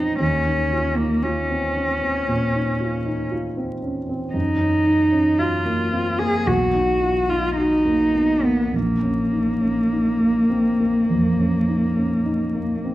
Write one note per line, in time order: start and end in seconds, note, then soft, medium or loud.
0.00 0.23 F2 soft
0.00 0.23 C4 soft
0.00 0.23 C#4 soft
0.00 0.18 D#4 soft
0.00 0.23 D#4 soft
0.00 0.23 F4 soft
0.19 2.24 D#2 soft
0.19 0.98 C#4 soft
0.46 0.88 D#4 soft
0.73 0.99 F4 soft
0.97 1.24 A#3 soft
0.97 1.40 D#4 soft
1.23 3.31 C#4 soft
1.23 1.66 F4 soft
1.50 1.92 C4 soft
1.77 2.03 C#4 soft
2.02 2.44 C4 soft
2.28 2.70 A#2 soft
2.54 2.96 D#4 soft
2.80 3.06 F4 soft
3.05 3.47 D#4 soft
3.32 3.73 F4 soft
3.57 3.98 C4 soft
3.83 4.09 C#4 soft
4.09 4.35 C4 soft
4.33 6.43 F#2 soft
4.33 5.40 D#4 medium
4.61 5.02 C#4 soft
4.86 5.13 D#4 soft
5.12 5.55 C#4 soft
5.38 6.21 F4 soft
5.38 5.82 F#4 soft
5.65 6.09 A#3 soft
5.92 6.20 C4 soft
6.19 6.47 A#3 soft
6.19 6.49 G#4 medium
6.47 8.69 B1 soft
6.47 7.31 F#4 soft
6.74 7.18 D#4 soft
7.01 7.29 F4 soft
7.29 7.74 D#4 soft
7.29 7.57 F4 soft
7.57 8.46 D#4 medium
7.57 8.03 F#4 soft
7.85 8.32 A#3 soft
8.14 8.43 B3 soft
8.43 8.73 A#3 soft
8.43 8.76 B3 soft
8.73 11.05 A#1 soft
8.73 12.86 A#3 soft
9.03 9.50 C#4 soft
9.32 9.62 D#4 soft
9.61 10.09 C#4 soft
9.91 10.39 D#4 soft
10.20 10.68 A#3 soft
10.50 10.80 C4 soft
10.80 11.27 A#3 soft
11.10 11.56 F2 soft
11.39 11.85 C#4 soft
11.68 11.97 D#4 soft
11.96 12.43 C#4 soft
12.25 12.73 D#4 soft
12.55 12.95 A#3 soft
12.85 12.95 C4 soft